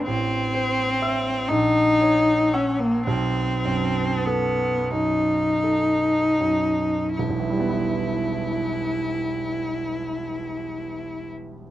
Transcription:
0, 0, Header, 1, 3, 480
1, 0, Start_track
1, 0, Key_signature, 1, "minor"
1, 0, Tempo, 943396
1, 26, Time_signature, 6, 3, 24, 8
1, 507, Tempo, 996678
1, 987, Tempo, 1067616
1, 1467, Tempo, 1200000
1, 1947, Tempo, 1360544
1, 2427, Tempo, 1574803
1, 2907, Tempo, 1526718
1, 4325, End_track
2, 0, Start_track
2, 0, Title_t, "Cello"
2, 0, Program_c, 0, 42
2, 25, Note_on_c, 0, 60, 86
2, 744, Note_on_c, 0, 63, 92
2, 751, Note_off_c, 0, 60, 0
2, 1231, Note_on_c, 0, 61, 70
2, 1238, Note_off_c, 0, 63, 0
2, 1347, Note_on_c, 0, 58, 78
2, 1354, Note_off_c, 0, 61, 0
2, 1466, Note_off_c, 0, 58, 0
2, 1469, Note_on_c, 0, 60, 77
2, 1948, Note_on_c, 0, 59, 72
2, 1953, Note_off_c, 0, 60, 0
2, 2176, Note_on_c, 0, 63, 68
2, 2181, Note_off_c, 0, 59, 0
2, 2896, Note_off_c, 0, 63, 0
2, 2898, Note_on_c, 0, 64, 46
2, 4192, Note_off_c, 0, 64, 0
2, 4325, End_track
3, 0, Start_track
3, 0, Title_t, "Grand piano"
3, 0, Program_c, 1, 0
3, 0, Control_c, 1, 64, 127
3, 34, Control_c, 1, 64, 0
3, 38, Note_on_c, 1, 33, 53
3, 105, Control_c, 1, 64, 127
3, 276, Note_on_c, 1, 72, 52
3, 520, Note_on_c, 1, 76, 50
3, 522, Note_on_c, 1, 88, 59
3, 653, Note_off_c, 1, 72, 0
3, 730, Note_off_c, 1, 33, 0
3, 730, Note_off_c, 1, 76, 0
3, 732, Note_off_c, 1, 88, 0
3, 752, Control_c, 1, 64, 0
3, 752, Note_on_c, 1, 34, 55
3, 832, Control_c, 1, 64, 127
3, 997, Note_on_c, 1, 73, 42
3, 1233, Note_on_c, 1, 88, 54
3, 1234, Note_on_c, 1, 78, 44
3, 1373, Note_off_c, 1, 73, 0
3, 1454, Note_off_c, 1, 34, 0
3, 1455, Note_off_c, 1, 88, 0
3, 1456, Note_off_c, 1, 78, 0
3, 1473, Note_on_c, 1, 35, 59
3, 1476, Control_c, 1, 64, 0
3, 1557, Control_c, 1, 64, 127
3, 1703, Note_on_c, 1, 42, 44
3, 1949, Note_on_c, 1, 69, 43
3, 2086, Note_off_c, 1, 42, 0
3, 2179, Note_on_c, 1, 42, 35
3, 2325, Note_off_c, 1, 69, 0
3, 2431, Note_on_c, 1, 69, 36
3, 2568, Note_off_c, 1, 42, 0
3, 2665, Note_on_c, 1, 42, 37
3, 2815, Note_off_c, 1, 69, 0
3, 2897, Note_off_c, 1, 35, 0
3, 2906, Note_off_c, 1, 42, 0
3, 2906, Note_on_c, 1, 28, 46
3, 2916, Control_c, 1, 64, 0
3, 2938, Note_on_c, 1, 35, 35
3, 2969, Note_on_c, 1, 52, 35
3, 2990, Control_c, 1, 64, 127
3, 3002, Note_on_c, 1, 55, 38
3, 3033, Note_on_c, 1, 59, 39
3, 3064, Note_on_c, 1, 64, 39
3, 4200, Note_off_c, 1, 28, 0
3, 4233, Note_off_c, 1, 35, 0
3, 4264, Note_off_c, 1, 52, 0
3, 4296, Note_off_c, 1, 55, 0
3, 4325, Note_off_c, 1, 59, 0
3, 4325, Note_off_c, 1, 64, 0
3, 4325, End_track
0, 0, End_of_file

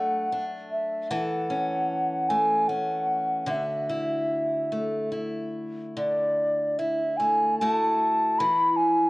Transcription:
0, 0, Header, 1, 3, 480
1, 0, Start_track
1, 0, Tempo, 797872
1, 653, Time_signature, 3, 2, 24, 8
1, 2098, Tempo, 826446
1, 4018, Tempo, 795756
1, 5408, End_track
2, 0, Start_track
2, 0, Title_t, "Flute"
2, 0, Program_c, 0, 73
2, 0, Note_on_c, 0, 78, 68
2, 270, Note_off_c, 0, 78, 0
2, 427, Note_on_c, 0, 76, 64
2, 664, Note_on_c, 0, 78, 71
2, 673, Note_off_c, 0, 76, 0
2, 1377, Note_on_c, 0, 80, 74
2, 1386, Note_off_c, 0, 78, 0
2, 1613, Note_on_c, 0, 78, 68
2, 1622, Note_off_c, 0, 80, 0
2, 2098, Note_off_c, 0, 78, 0
2, 2102, Note_on_c, 0, 76, 69
2, 3031, Note_off_c, 0, 76, 0
2, 3543, Note_on_c, 0, 74, 70
2, 4014, Note_on_c, 0, 76, 71
2, 4022, Note_off_c, 0, 74, 0
2, 4245, Note_on_c, 0, 80, 78
2, 4254, Note_off_c, 0, 76, 0
2, 4494, Note_off_c, 0, 80, 0
2, 4498, Note_on_c, 0, 81, 75
2, 4980, Note_on_c, 0, 83, 86
2, 4989, Note_off_c, 0, 81, 0
2, 5208, Note_on_c, 0, 80, 76
2, 5217, Note_off_c, 0, 83, 0
2, 5408, Note_off_c, 0, 80, 0
2, 5408, End_track
3, 0, Start_track
3, 0, Title_t, "Steel-string acoustic guitar"
3, 0, Program_c, 1, 25
3, 0, Note_on_c, 1, 54, 57
3, 0, Note_on_c, 1, 57, 41
3, 0, Note_on_c, 1, 62, 45
3, 0, Note_on_c, 1, 69, 41
3, 175, Note_off_c, 1, 62, 0
3, 195, Note_on_c, 1, 62, 45
3, 652, Note_off_c, 1, 54, 0
3, 665, Note_on_c, 1, 52, 62
3, 666, Note_off_c, 1, 69, 0
3, 668, Note_on_c, 1, 69, 47
3, 709, Note_off_c, 1, 62, 0
3, 901, Note_on_c, 1, 61, 51
3, 1381, Note_off_c, 1, 57, 0
3, 1384, Note_on_c, 1, 57, 44
3, 1612, Note_off_c, 1, 61, 0
3, 1619, Note_on_c, 1, 61, 48
3, 2085, Note_on_c, 1, 50, 61
3, 2089, Note_off_c, 1, 69, 0
3, 2092, Note_on_c, 1, 66, 50
3, 2109, Note_off_c, 1, 52, 0
3, 2148, Note_off_c, 1, 61, 0
3, 2335, Note_on_c, 1, 64, 47
3, 2811, Note_off_c, 1, 57, 0
3, 2814, Note_on_c, 1, 57, 37
3, 3042, Note_off_c, 1, 64, 0
3, 3044, Note_on_c, 1, 64, 37
3, 3534, Note_off_c, 1, 50, 0
3, 3537, Note_on_c, 1, 50, 56
3, 4013, Note_off_c, 1, 64, 0
3, 4015, Note_on_c, 1, 64, 42
3, 4033, Note_off_c, 1, 66, 0
3, 4259, Note_off_c, 1, 57, 0
3, 4261, Note_on_c, 1, 57, 42
3, 4505, Note_off_c, 1, 57, 0
3, 4512, Note_off_c, 1, 64, 0
3, 4512, Note_on_c, 1, 57, 46
3, 4515, Note_on_c, 1, 64, 46
3, 4518, Note_on_c, 1, 66, 54
3, 4985, Note_off_c, 1, 50, 0
3, 4988, Note_on_c, 1, 52, 59
3, 5038, Note_off_c, 1, 57, 0
3, 5042, Note_off_c, 1, 66, 0
3, 5408, Note_off_c, 1, 52, 0
3, 5408, Note_off_c, 1, 64, 0
3, 5408, End_track
0, 0, End_of_file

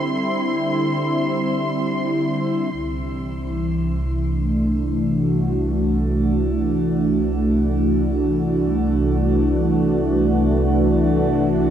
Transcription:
0, 0, Header, 1, 3, 480
1, 0, Start_track
1, 0, Tempo, 500000
1, 11234, End_track
2, 0, Start_track
2, 0, Title_t, "Violin section"
2, 0, Program_c, 0, 48
2, 0, Note_on_c, 0, 84, 73
2, 2636, Note_off_c, 0, 84, 0
2, 11234, End_track
3, 0, Start_track
3, 0, Title_t, "Analog synth pad"
3, 0, Program_c, 1, 89
3, 0, Note_on_c, 1, 50, 71
3, 0, Note_on_c, 1, 55, 64
3, 0, Note_on_c, 1, 60, 73
3, 0, Note_on_c, 1, 64, 82
3, 2616, Note_on_c, 1, 36, 75
3, 2619, Note_off_c, 1, 50, 0
3, 2628, Note_off_c, 1, 55, 0
3, 2986, Note_on_c, 1, 52, 65
3, 3785, Note_off_c, 1, 60, 0
3, 4089, Note_on_c, 1, 62, 63
3, 4095, Note_on_c, 1, 57, 66
3, 4656, Note_off_c, 1, 64, 0
3, 4894, Note_on_c, 1, 66, 67
3, 11234, Note_off_c, 1, 36, 0
3, 11234, Note_off_c, 1, 52, 0
3, 11234, Note_off_c, 1, 57, 0
3, 11234, Note_off_c, 1, 62, 0
3, 11234, Note_off_c, 1, 66, 0
3, 11234, End_track
0, 0, End_of_file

